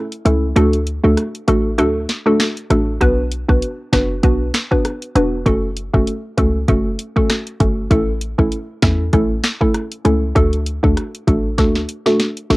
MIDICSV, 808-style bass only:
0, 0, Header, 1, 2, 480
1, 0, Start_track
1, 0, Tempo, 612245
1, 441, Time_signature, 4, 2, 24, 8
1, 9854, End_track
2, 0, Start_track
2, 0, Title_t, "808-style bass"
2, 0, Program_c, 0, 38
2, 201, Note_on_c, 0, 37, 91
2, 418, Note_off_c, 0, 37, 0
2, 440, Note_on_c, 0, 38, 108
2, 784, Note_off_c, 0, 38, 0
2, 815, Note_on_c, 0, 38, 94
2, 911, Note_off_c, 0, 38, 0
2, 1161, Note_on_c, 0, 33, 97
2, 1401, Note_on_c, 0, 38, 107
2, 1413, Note_off_c, 0, 33, 0
2, 1618, Note_off_c, 0, 38, 0
2, 2120, Note_on_c, 0, 33, 100
2, 2338, Note_off_c, 0, 33, 0
2, 2360, Note_on_c, 0, 35, 105
2, 2703, Note_off_c, 0, 35, 0
2, 2736, Note_on_c, 0, 35, 83
2, 2831, Note_off_c, 0, 35, 0
2, 3080, Note_on_c, 0, 30, 97
2, 3297, Note_off_c, 0, 30, 0
2, 3321, Note_on_c, 0, 35, 107
2, 3538, Note_off_c, 0, 35, 0
2, 4041, Note_on_c, 0, 28, 96
2, 4258, Note_off_c, 0, 28, 0
2, 4281, Note_on_c, 0, 30, 99
2, 4624, Note_off_c, 0, 30, 0
2, 4656, Note_on_c, 0, 30, 103
2, 4751, Note_off_c, 0, 30, 0
2, 4999, Note_on_c, 0, 37, 92
2, 5217, Note_off_c, 0, 37, 0
2, 5240, Note_on_c, 0, 30, 112
2, 5457, Note_off_c, 0, 30, 0
2, 5962, Note_on_c, 0, 31, 103
2, 6178, Note_off_c, 0, 31, 0
2, 6200, Note_on_c, 0, 33, 116
2, 6544, Note_off_c, 0, 33, 0
2, 6576, Note_on_c, 0, 33, 92
2, 6671, Note_off_c, 0, 33, 0
2, 6919, Note_on_c, 0, 40, 93
2, 7137, Note_off_c, 0, 40, 0
2, 7160, Note_on_c, 0, 33, 106
2, 7378, Note_off_c, 0, 33, 0
2, 7881, Note_on_c, 0, 37, 94
2, 8098, Note_off_c, 0, 37, 0
2, 8121, Note_on_c, 0, 38, 107
2, 8464, Note_off_c, 0, 38, 0
2, 8497, Note_on_c, 0, 38, 96
2, 8592, Note_off_c, 0, 38, 0
2, 8841, Note_on_c, 0, 33, 94
2, 9081, Note_on_c, 0, 38, 102
2, 9093, Note_off_c, 0, 33, 0
2, 9298, Note_off_c, 0, 38, 0
2, 9802, Note_on_c, 0, 33, 98
2, 9854, Note_off_c, 0, 33, 0
2, 9854, End_track
0, 0, End_of_file